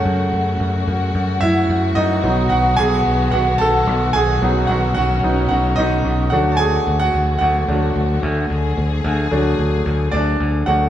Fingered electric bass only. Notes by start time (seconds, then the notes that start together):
0.05 F#2
0.33 F#2
0.60 F#2
0.87 F#2
1.15 F#2
1.42 F#2
1.69 F#2
1.96 F#2
2.24 B1
2.51 B1
2.78 B1
3.06 B1
3.33 B1
3.60 B1
3.87 B1
4.14 B1
4.42 B1
4.69 B1
4.96 B1
5.24 B1
5.51 B1
5.78 B1
6.05 B1
6.32 D2
6.87 D2
7.14 D2
7.41 D2
7.68 D2
7.96 D2
8.23 D2
8.50 D2
8.77 D2
9.04 D2
9.31 D2
9.59 D2
9.86 D2
10.13 D2
10.40 D2
10.67 D2